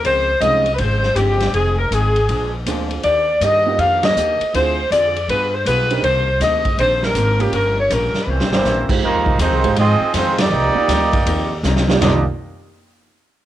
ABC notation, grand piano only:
X:1
M:4/4
L:1/8
Q:"Swing" 1/4=160
K:Cm
V:1 name="Grand piano"
z2 [A,_DEFc] z4 z | z6 [B,CDFA]2 | z3 [B,DEFG]3 z2 | [CD=EFA] z6 [CD_EGB] |
z6 z [B,_DFGB] | z6 z [A,EFGc]- | [A,EFGc]2 z [A,EFGc] z4 | z [B,EFGd] z4 z [C,B,EFGd] |
[B,EFGd] z6 z |]